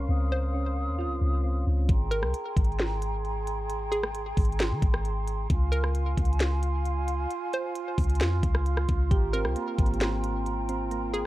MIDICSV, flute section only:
0, 0, Header, 1, 2, 480
1, 0, Start_track
1, 0, Key_signature, -4, "major"
1, 0, Tempo, 451128
1, 93, Time_signature, 4, 2, 24, 8
1, 11984, End_track
2, 0, Start_track
2, 0, Title_t, "Flute section"
2, 0, Program_c, 0, 73
2, 0, Note_on_c, 0, 70, 76
2, 0, Note_on_c, 0, 77, 71
2, 0, Note_on_c, 0, 84, 84
2, 94, Note_on_c, 0, 87, 84
2, 1707, Note_off_c, 0, 70, 0
2, 1751, Note_off_c, 0, 84, 0
2, 1757, Note_off_c, 0, 77, 0
2, 1757, Note_off_c, 0, 87, 0
2, 2013, Note_on_c, 0, 84, 95
2, 2014, Note_on_c, 0, 68, 83
2, 2014, Note_on_c, 0, 79, 75
2, 2014, Note_on_c, 0, 82, 73
2, 5815, Note_off_c, 0, 68, 0
2, 5815, Note_off_c, 0, 79, 0
2, 5815, Note_off_c, 0, 82, 0
2, 5853, Note_on_c, 0, 65, 80
2, 5853, Note_on_c, 0, 77, 76
2, 5854, Note_on_c, 0, 80, 90
2, 9365, Note_off_c, 0, 80, 0
2, 9429, Note_off_c, 0, 77, 0
2, 9694, Note_on_c, 0, 79, 75
2, 9694, Note_on_c, 0, 82, 77
2, 11984, Note_off_c, 0, 65, 0
2, 11984, Note_off_c, 0, 79, 0
2, 11984, Note_off_c, 0, 82, 0
2, 11984, Note_off_c, 0, 84, 0
2, 11984, End_track
0, 0, End_of_file